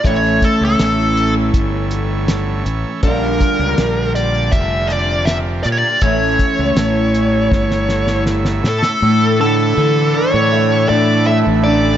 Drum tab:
HH |x-x-x-x-x-x-x-x-|x-x-x-x-x-x-x-x-|x-x-x-x---------|----------------|
SD |----o-------o---|----o-------o---|----o---oooooooo|----------------|
BD |o-o-----o-------|o-o-----o-------|o-o-----o-------|----------------|